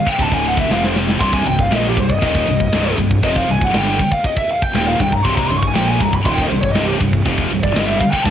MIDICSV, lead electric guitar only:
0, 0, Header, 1, 2, 480
1, 0, Start_track
1, 0, Key_signature, -3, "minor"
1, 0, Tempo, 503778
1, 1153, Time_signature, 4, 2, 24, 8
1, 7911, End_track
2, 0, Start_track
2, 0, Title_t, "Lead electric guitar"
2, 0, Program_c, 0, 29
2, 85, Note_on_c, 0, 79, 95
2, 197, Note_off_c, 0, 79, 0
2, 197, Note_on_c, 0, 81, 103
2, 310, Note_off_c, 0, 81, 0
2, 319, Note_on_c, 0, 80, 83
2, 432, Note_off_c, 0, 80, 0
2, 456, Note_on_c, 0, 78, 92
2, 548, Note_off_c, 0, 78, 0
2, 552, Note_on_c, 0, 76, 91
2, 668, Note_off_c, 0, 76, 0
2, 687, Note_on_c, 0, 77, 111
2, 796, Note_off_c, 0, 77, 0
2, 804, Note_on_c, 0, 72, 98
2, 873, Note_off_c, 0, 72, 0
2, 1145, Note_on_c, 0, 84, 101
2, 1266, Note_off_c, 0, 84, 0
2, 1268, Note_on_c, 0, 80, 98
2, 1387, Note_off_c, 0, 80, 0
2, 1399, Note_on_c, 0, 79, 110
2, 1513, Note_off_c, 0, 79, 0
2, 1529, Note_on_c, 0, 77, 94
2, 1658, Note_off_c, 0, 77, 0
2, 1658, Note_on_c, 0, 75, 86
2, 1763, Note_off_c, 0, 75, 0
2, 1778, Note_on_c, 0, 67, 67
2, 1884, Note_off_c, 0, 67, 0
2, 1902, Note_on_c, 0, 72, 95
2, 2022, Note_off_c, 0, 72, 0
2, 2022, Note_on_c, 0, 75, 100
2, 2111, Note_off_c, 0, 75, 0
2, 2122, Note_on_c, 0, 75, 84
2, 2803, Note_off_c, 0, 75, 0
2, 3090, Note_on_c, 0, 75, 98
2, 3199, Note_on_c, 0, 77, 90
2, 3201, Note_off_c, 0, 75, 0
2, 3315, Note_off_c, 0, 77, 0
2, 3343, Note_on_c, 0, 80, 122
2, 3467, Note_off_c, 0, 80, 0
2, 3467, Note_on_c, 0, 78, 87
2, 3570, Note_off_c, 0, 78, 0
2, 3581, Note_on_c, 0, 79, 105
2, 3905, Note_off_c, 0, 79, 0
2, 3922, Note_on_c, 0, 77, 99
2, 4037, Note_off_c, 0, 77, 0
2, 4052, Note_on_c, 0, 75, 90
2, 4162, Note_off_c, 0, 75, 0
2, 4171, Note_on_c, 0, 76, 79
2, 4282, Note_off_c, 0, 76, 0
2, 4295, Note_on_c, 0, 77, 99
2, 4406, Note_off_c, 0, 77, 0
2, 4406, Note_on_c, 0, 79, 90
2, 4503, Note_off_c, 0, 79, 0
2, 4515, Note_on_c, 0, 79, 106
2, 4633, Note_off_c, 0, 79, 0
2, 4645, Note_on_c, 0, 77, 92
2, 4758, Note_off_c, 0, 77, 0
2, 4770, Note_on_c, 0, 79, 101
2, 4881, Note_off_c, 0, 79, 0
2, 4889, Note_on_c, 0, 82, 99
2, 4982, Note_off_c, 0, 82, 0
2, 4982, Note_on_c, 0, 84, 120
2, 5097, Note_off_c, 0, 84, 0
2, 5101, Note_on_c, 0, 82, 105
2, 5225, Note_off_c, 0, 82, 0
2, 5225, Note_on_c, 0, 84, 114
2, 5309, Note_off_c, 0, 84, 0
2, 5313, Note_on_c, 0, 85, 106
2, 5393, Note_off_c, 0, 85, 0
2, 5408, Note_on_c, 0, 80, 87
2, 5471, Note_off_c, 0, 80, 0
2, 5475, Note_on_c, 0, 79, 94
2, 5593, Note_off_c, 0, 79, 0
2, 5601, Note_on_c, 0, 80, 93
2, 5725, Note_off_c, 0, 80, 0
2, 5725, Note_on_c, 0, 82, 108
2, 5837, Note_off_c, 0, 82, 0
2, 5862, Note_on_c, 0, 83, 100
2, 5954, Note_off_c, 0, 83, 0
2, 5954, Note_on_c, 0, 84, 104
2, 6021, Note_on_c, 0, 79, 90
2, 6033, Note_off_c, 0, 84, 0
2, 6106, Note_off_c, 0, 79, 0
2, 6120, Note_on_c, 0, 75, 75
2, 6167, Note_off_c, 0, 75, 0
2, 6171, Note_on_c, 0, 72, 97
2, 6298, Note_off_c, 0, 72, 0
2, 6302, Note_on_c, 0, 73, 85
2, 6396, Note_off_c, 0, 73, 0
2, 6400, Note_on_c, 0, 75, 108
2, 6525, Note_on_c, 0, 67, 98
2, 6533, Note_off_c, 0, 75, 0
2, 6606, Note_off_c, 0, 67, 0
2, 7272, Note_on_c, 0, 74, 78
2, 7382, Note_off_c, 0, 74, 0
2, 7386, Note_on_c, 0, 75, 87
2, 7494, Note_off_c, 0, 75, 0
2, 7494, Note_on_c, 0, 76, 82
2, 7601, Note_on_c, 0, 77, 89
2, 7618, Note_off_c, 0, 76, 0
2, 7721, Note_off_c, 0, 77, 0
2, 7725, Note_on_c, 0, 79, 77
2, 7836, Note_off_c, 0, 79, 0
2, 7840, Note_on_c, 0, 81, 91
2, 7911, Note_off_c, 0, 81, 0
2, 7911, End_track
0, 0, End_of_file